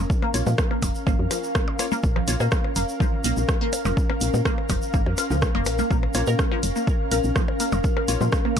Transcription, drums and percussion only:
0.10 kick, shaker
0.22 percussion blips
0.34 open hi-hat, shaker
0.47 percussion blips, shaker
0.58 kick, cross-stick, shaker
0.71 percussion blips
0.82 kick, open hi-hat, percussion blips, shaker
0.95 shaker
1.07 kick, percussion blips, shaker
1.31 open hi-hat, percussion blips, shaker
1.44 shaker
1.55 kick, cross-stick, shaker
1.68 percussion blips
1.79 open hi-hat, percussion blips, shaker
1.92 percussion blips, shaker
2.03 kick, shaker
2.16 percussion blips
2.28 open hi-hat, shaker
2.40 percussion blips, shaker
2.51 kick, cross-stick, shaker
2.64 percussion blips
2.76 open hi-hat, shaker
2.89 shaker
3.00 kick, shaker
3.24 open hi-hat, shaker
3.37 shaker
3.49 kick, cross-stick, shaker
3.73 open hi-hat, percussion blips, shaker
3.85 percussion blips, shaker
3.97 kick, shaker
4.10 percussion blips
4.21 open hi-hat, shaker
4.34 percussion blips, shaker
4.45 kick, cross-stick, shaker
4.58 percussion blips
4.69 kick, open hi-hat, percussion blips, shaker
4.82 shaker
4.94 kick, shaker
5.06 percussion blips
5.18 open hi-hat, percussion blips, shaker
5.31 shaker
5.42 kick, cross-stick, shaker
5.55 percussion blips
5.66 open hi-hat, percussion blips, shaker
5.79 percussion blips, shaker
5.91 kick, shaker
6.03 percussion blips
6.14 open hi-hat, percussion blips, shaker
6.27 shaker
6.39 kick, cross-stick, shaker
6.51 percussion blips
6.63 open hi-hat, shaker
6.76 shaker
6.87 kick, shaker
7.12 open hi-hat, shaker
7.24 shaker
7.36 kick, cross-stick, shaker
7.48 percussion blips
7.60 open hi-hat, shaker
7.72 percussion blips, shaker
7.84 kick, shaker
7.97 percussion blips
8.08 open hi-hat, shaker
8.21 percussion blips, shaker
8.32 kick, cross-stick, shaker
8.45 percussion blips
8.57 kick, open hi-hat, percussion blips

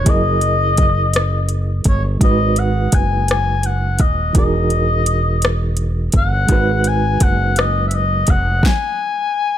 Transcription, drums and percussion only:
0.06 kick, closed hi-hat
0.41 closed hi-hat
0.77 kick, closed hi-hat
1.13 cross-stick, closed hi-hat
1.49 closed hi-hat
1.84 kick, closed hi-hat
2.21 kick, closed hi-hat
2.56 closed hi-hat
2.92 kick, closed hi-hat
3.28 cross-stick, closed hi-hat
3.63 closed hi-hat
3.99 kick, closed hi-hat
4.35 kick, closed hi-hat
4.70 closed hi-hat
5.06 closed hi-hat
5.42 cross-stick, closed hi-hat
5.77 closed hi-hat
6.12 kick, closed hi-hat
6.48 kick, closed hi-hat
6.84 closed hi-hat
7.20 kick, closed hi-hat
7.56 cross-stick, closed hi-hat
7.91 closed hi-hat
8.27 kick, closed hi-hat
8.63 kick, snare

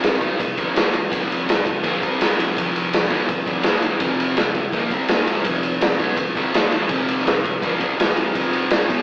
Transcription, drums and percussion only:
0.04 snare, ride
0.21 kick, ride
0.40 kick, ride
0.57 kick, ride
0.76 snare, ride
0.94 ride
1.12 kick, ride
1.32 ride
1.49 snare, ride
1.66 kick, ride
1.84 kick, ride
2.02 kick, ride
2.21 snare, ride
2.40 ride
2.57 kick, ride
2.76 ride
2.93 snare, ride
3.10 kick, ride
3.29 kick, ride
3.46 kick, ride
3.63 snare, ride
3.82 ride
4.00 kick, ride
4.20 ride
4.37 snare, ride
4.55 kick, ride
4.72 kick, ride
4.90 kick, ride
5.08 snare, ride
5.27 ride
5.45 kick, ride
5.63 ride
5.81 snare, ride
5.99 kick, ride
6.17 kick, ride
6.35 kick, ride
6.54 snare, ride
6.72 ride
6.89 kick, ride
7.08 ride
7.19 snare
7.27 snare, ride
7.44 kick, ride
7.62 kick, ride
7.81 kick, ride
8.00 snare, ride
8.17 ride
8.35 kick, ride
8.53 ride
8.70 snare, ride
8.90 kick, ride

